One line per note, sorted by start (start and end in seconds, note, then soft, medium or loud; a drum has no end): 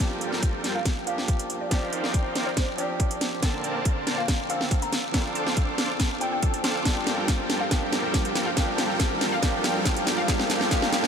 0.00 1.03 F3 medium
0.00 0.62 G3 medium
0.00 1.04 A#3 medium
0.00 1.05 D4 medium
0.00 0.62 F4 medium
0.00 1.05 G4 loud
0.00 0.62 A4 medium
0.00 0.62 A#4 medium
0.00 0.62 G5 medium
0.21 closed hi-hat medium
0.32 snare soft
0.43 kick medium
0.43 closed hi-hat medium
0.64 0.78 G3 medium
0.64 0.78 F4 medium
0.64 0.78 A4 medium
0.64 0.78 A#4 medium
0.64 0.78 G5 medium
0.64 snare soft
0.64 closed hi-hat medium
0.75 1.05 F5 medium
0.85 kick medium
0.85 snare soft
0.85 closed hi-hat medium
1.05 1.68 F3 medium
1.05 1.68 A#3 medium
1.05 1.69 D4 medium
1.05 1.70 G4 medium
1.05 1.18 F5 medium
1.05 closed hi-hat medium
1.18 snare soft
1.28 kick medium
1.28 closed hi-hat medium
1.39 closed hi-hat medium
1.50 closed hi-hat medium
1.61 1.68 D5 medium
1.69 2.75 F3 medium
1.69 2.76 C4 medium
1.69 2.33 D#4 medium
1.69 2.33 A#4 medium
1.69 2.33 C5 medium
1.69 2.33 D5 medium
1.69 2.76 D5 medium
1.69 2.33 F5 medium
1.69 2.33 G5 medium
1.69 kick medium
1.69 snare medium
1.69 closed hi-hat medium
1.73 2.77 G4 loud
1.93 closed hi-hat medium
2.04 snare soft
2.14 kick loud
2.14 closed hi-hat medium
2.35 2.50 D#4 medium
2.35 2.50 A#4 medium
2.35 2.50 C5 medium
2.35 2.50 D5 medium
2.35 2.50 F5 medium
2.35 2.50 G5 medium
2.35 snare medium
2.35 closed hi-hat medium
2.47 2.53 C5 medium
2.57 2.64 C5 medium
2.57 kick medium
2.57 snare medium
2.57 closed hi-hat medium
2.76 3.39 F3 medium
2.76 3.40 C4 medium
2.76 3.40 D4 medium
2.76 3.11 D5 medium
2.76 closed hi-hat medium
2.80 3.41 G4 medium
3.00 kick medium
3.00 closed hi-hat medium
3.11 closed hi-hat medium
3.21 snare medium
3.21 closed hi-hat medium
3.41 4.46 D3 medium
3.41 4.47 A#3 medium
3.41 4.04 A#3 medium
3.41 4.48 C4 medium
3.41 4.04 A#4 medium
3.41 4.04 C5 medium
3.41 4.04 D5 medium
3.41 4.04 A5 medium
3.41 kick loud
3.41 snare medium
3.41 closed hi-hat medium
3.45 4.48 A5 loud
3.64 closed hi-hat medium
3.85 kick loud
3.85 closed hi-hat medium
4.07 4.21 A#3 medium
4.07 4.21 A#4 medium
4.07 4.21 C5 medium
4.07 4.21 D5 medium
4.07 4.21 A5 medium
4.07 snare medium
4.07 closed hi-hat medium
4.18 4.48 F5 medium
4.28 kick loud
4.28 snare medium
4.28 closed hi-hat medium
4.49 4.91 D3 medium
4.49 4.91 A#3 medium
4.49 4.92 C4 medium
4.49 4.92 A4 medium
4.49 4.61 F5 medium
4.49 closed hi-hat medium
4.61 snare medium
4.71 kick medium
4.71 closed hi-hat medium
4.82 4.97 A#5 medium
4.82 closed hi-hat medium
4.93 snare medium
4.93 closed hi-hat medium
5.12 6.18 F3 medium
5.12 6.18 C4 medium
5.12 5.76 D4 medium
5.12 6.19 D4 medium
5.12 5.76 A4 medium
5.12 6.20 A4 loud
5.12 5.76 C5 medium
5.12 5.76 F5 medium
5.12 5.76 D6 medium
5.12 kick medium
5.12 snare medium
5.12 closed hi-hat medium
5.35 5.47 A5 medium
5.35 closed hi-hat medium
5.46 snare medium
5.57 kick loud
5.57 closed hi-hat medium
5.78 5.93 D4 medium
5.78 5.93 A4 medium
5.78 5.93 C5 medium
5.78 5.93 F5 medium
5.78 5.93 D6 medium
5.78 snare medium
5.78 closed hi-hat medium
6.00 kick medium
6.00 snare medium
6.00 closed hi-hat medium
6.19 6.82 F3 medium
6.19 6.83 C4 medium
6.19 6.83 D4 medium
6.19 6.84 A4 medium
6.19 6.28 G5 medium
6.19 closed hi-hat medium
6.32 6.39 G5 medium
6.42 6.50 A5 medium
6.42 kick medium
6.42 closed hi-hat medium
6.54 6.60 A5 medium
6.54 closed hi-hat medium
6.64 6.83 D4 medium
6.64 6.83 A4 medium
6.64 6.83 C5 medium
6.64 6.83 F5 medium
6.64 6.83 D6 medium
6.64 snare medium
6.64 closed hi-hat medium
6.83 7.68 F3 medium
6.83 7.47 G3 medium
6.83 7.69 A#3 medium
6.83 7.70 D4 medium
6.83 7.47 F4 medium
6.83 7.47 A4 medium
6.83 7.47 A#4 medium
6.83 7.47 G5 medium
6.83 kick loud
6.83 snare medium
6.83 closed hi-hat medium
6.83 riser medium
6.87 7.71 G4 medium
7.07 snare medium
7.07 closed hi-hat medium
7.28 kick loud
7.28 snare medium
7.28 closed hi-hat medium
7.50 7.64 G3 medium
7.50 7.64 F4 medium
7.50 7.64 A4 medium
7.50 7.64 A#4 medium
7.50 7.64 G5 medium
7.50 snare medium
7.50 closed hi-hat medium
7.61 7.69 F5 medium
7.69 8.54 F3 medium
7.69 8.33 G3 medium
7.69 8.55 A#3 medium
7.69 8.56 D4 medium
7.69 8.33 F4 medium
7.69 8.33 A4 medium
7.69 8.33 A#4 medium
7.69 8.33 G5 medium
7.69 kick loud
7.69 snare medium
7.69 closed hi-hat medium
7.73 8.56 G4 medium
7.93 snare medium
7.93 closed hi-hat medium
8.14 kick loud
8.14 snare medium
8.14 closed hi-hat medium
8.25 closed hi-hat medium
8.35 8.50 G3 medium
8.35 8.50 F4 medium
8.35 8.50 A4 medium
8.35 8.50 A#4 medium
8.35 8.50 G5 medium
8.35 snare medium
8.35 closed hi-hat medium
8.47 8.55 F5 medium
8.55 9.39 F3 medium
8.55 9.19 G3 medium
8.55 9.41 A#3 medium
8.55 9.41 D4 medium
8.55 9.19 F4 medium
8.55 9.42 G4 loud
8.55 9.19 A4 medium
8.55 9.19 A#4 medium
8.55 9.19 G5 medium
8.55 kick loud
8.55 snare medium
8.55 closed hi-hat medium
8.78 snare medium
8.78 closed hi-hat medium
9.00 kick loud
9.00 snare medium
9.00 closed hi-hat medium
9.21 9.36 G3 medium
9.21 9.35 F4 medium
9.21 9.36 A4 medium
9.21 9.36 A#4 medium
9.21 9.36 G5 medium
9.21 snare medium
9.21 closed hi-hat medium
9.32 9.41 F5 medium
9.41 10.25 F3 medium
9.41 10.04 G3 medium
9.41 10.26 A#3 medium
9.41 10.27 D4 medium
9.41 10.04 F4 medium
9.41 10.04 A4 medium
9.41 10.04 A#4 medium
9.41 10.04 G5 medium
9.41 kick loud
9.41 snare medium
9.41 closed hi-hat medium
9.45 10.28 G4 loud
9.64 snare medium
9.64 closed hi-hat medium
9.85 kick loud
9.85 snare medium
9.85 closed hi-hat medium
9.97 closed hi-hat medium
10.07 10.21 G3 medium
10.07 10.21 F4 medium
10.07 10.21 A4 medium
10.07 10.21 A#4 medium
10.07 10.21 G5 medium
10.07 snare medium
10.07 closed hi-hat medium
10.18 10.27 F5 medium
10.26 10.68 F3 medium
10.26 10.70 G3 medium
10.26 10.69 A#3 medium
10.26 10.70 D4 medium
10.26 10.70 F4 medium
10.26 10.70 A4 medium
10.26 10.70 A#4 medium
10.26 10.59 F5 medium
10.26 10.70 G5 medium
10.26 kick loud
10.26 snare medium
10.26 closed hi-hat medium
10.30 10.71 G4 loud
10.39 snare medium
10.50 snare medium
10.50 closed hi-hat medium
10.61 snare medium
10.69 11.07 F3 medium
10.69 11.07 G3 medium
10.69 11.07 A#3 medium
10.69 11.07 D4 medium
10.69 11.07 F4 medium
10.69 11.07 A4 medium
10.69 11.07 A#4 medium
10.69 11.02 F5 medium
10.69 11.07 G5 medium
10.69 kick loud
10.69 snare medium
10.69 closed hi-hat medium
10.73 11.07 G4 loud
10.82 snare medium
10.93 snare medium
10.93 closed hi-hat medium
11.04 snare medium